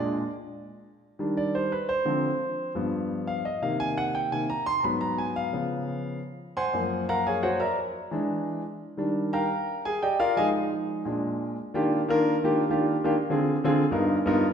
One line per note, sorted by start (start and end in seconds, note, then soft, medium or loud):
0.00 0.21 A#2 medium
0.00 0.22 G#3 medium
0.00 0.22 D4 medium
0.00 0.30 D5 loud
1.19 1.69 D#3 medium
1.19 1.69 G3 soft
1.19 1.69 D4 medium
1.37 1.54 D5 medium
1.55 1.72 C5 medium
1.72 1.89 B4 medium
1.89 2.71 C5 medium
2.05 2.29 D3 medium
2.05 2.29 F3 medium
2.05 2.29 C4 medium
2.75 3.41 G2 medium
2.75 3.41 F3 medium
2.75 3.42 B3 medium
3.27 3.44 F5 medium
3.45 3.62 D#5 medium
3.62 4.30 C3 medium
3.62 4.31 D#3 soft
3.62 4.31 A#3 medium
3.62 3.79 F5 medium
3.80 3.96 G#5 loud
3.98 4.14 F#5 loud
4.15 4.31 G5 medium
4.32 4.47 C3 soft
4.32 4.47 D#3 soft
4.32 4.48 A#3 medium
4.32 4.49 G#5 medium
4.50 4.66 A#5 medium
4.66 4.83 C6 loud
4.80 5.49 G#2 medium
4.80 4.82 A#5 medium
4.84 5.49 F#3 medium
4.84 5.50 B3 medium
4.84 5.01 B5 medium
5.01 5.17 A#5 medium
5.18 5.35 G#5 medium
5.36 6.18 F5 medium
5.53 6.18 C#3 soft
5.53 6.18 F3 soft
5.53 6.19 B3 medium
6.57 7.05 C5 medium
6.57 7.05 F#5 medium
6.57 7.05 G#5 medium
6.57 7.05 C6 medium
6.73 7.56 F#2 medium
6.73 7.56 F3 medium
6.73 7.57 A#3 medium
7.09 7.26 A#4 medium
7.09 7.25 F5 medium
7.09 7.25 F#5 medium
7.09 7.25 A#5 loud
7.27 7.43 G#4 medium
7.27 7.42 C#5 medium
7.27 7.43 F5 medium
7.27 7.43 G#5 medium
7.43 7.60 F#4 medium
7.43 7.60 C5 medium
7.43 7.60 C#5 medium
7.43 7.59 F#5 medium
7.60 7.77 A#4 medium
7.60 7.77 D5 medium
7.60 7.77 E5 medium
7.60 7.77 A#5 medium
8.11 8.61 E3 medium
8.11 8.61 G#3 medium
8.11 8.61 D4 medium
8.97 9.47 D#3 medium
8.97 9.47 G3 medium
8.97 9.48 D4 medium
9.33 9.82 A#4 medium
9.33 9.82 F5 medium
9.33 9.81 G5 medium
9.33 9.81 A#5 medium
9.85 10.02 G#4 medium
9.85 10.02 G#5 medium
10.03 10.19 G4 medium
10.03 10.18 D5 medium
10.03 10.19 D#5 medium
10.03 10.19 G5 medium
10.20 10.36 F4 medium
10.20 10.36 A#4 medium
10.20 10.36 D5 medium
10.20 10.36 F5 loud
10.36 11.02 F3 medium
10.36 11.03 G#3 medium
10.36 11.03 D#4 medium
10.36 10.48 G#4 medium
10.36 10.48 D#5 medium
10.36 10.48 F5 medium
10.36 10.47 G#5 loud
11.05 11.55 A#2 medium
11.05 11.55 G#3 medium
11.05 11.55 D4 medium
11.74 11.99 D#3 medium
11.74 11.99 A#3 medium
11.74 11.99 D4 medium
11.74 11.99 F4 medium
11.74 11.99 G4 medium
12.08 12.33 D#3 medium
12.08 12.34 A#3 medium
12.08 12.34 D4 medium
12.08 12.34 F4 medium
12.08 12.34 A#4 loud
12.44 12.62 D#3 medium
12.44 12.62 A#3 medium
12.44 12.62 D4 medium
12.44 12.63 F4 medium
12.44 12.63 G4 medium
12.69 12.94 D#3 medium
12.69 12.94 A#3 medium
12.69 12.95 D4 medium
12.69 12.95 F4 medium
12.69 12.95 G4 medium
13.04 13.13 D#3 medium
13.04 13.13 A#3 medium
13.04 13.14 D4 medium
13.04 13.14 F4 medium
13.04 13.14 G4 medium
13.30 13.55 D3 medium
13.30 13.55 C4 medium
13.30 13.55 F4 medium
13.30 13.55 G#4 medium
13.64 13.82 D3 medium
13.64 13.83 C4 medium
13.64 13.83 F4 medium
13.64 13.83 G#4 loud
13.91 14.16 G2 medium
13.91 14.16 B3 medium
13.91 14.16 D#4 medium
13.91 14.16 F4 medium
13.91 14.16 A#4 medium
14.26 14.44 G2 medium
14.26 14.44 B3 medium
14.26 14.45 D#4 medium
14.26 14.45 F4 medium
14.26 14.45 A#4 loud